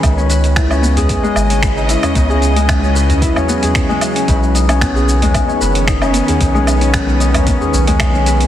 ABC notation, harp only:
X:1
M:4/4
L:1/16
Q:"Swing 16ths" 1/4=113
K:C#m
V:1 name="Harp"
z C B z E C B, G z G, z C B z E C | B, G z G, z C B z E C B, G z G, z C | B z D C B, G z G, z C B z D C B, G | z G, z C B z D C B, G z G, z C B z |]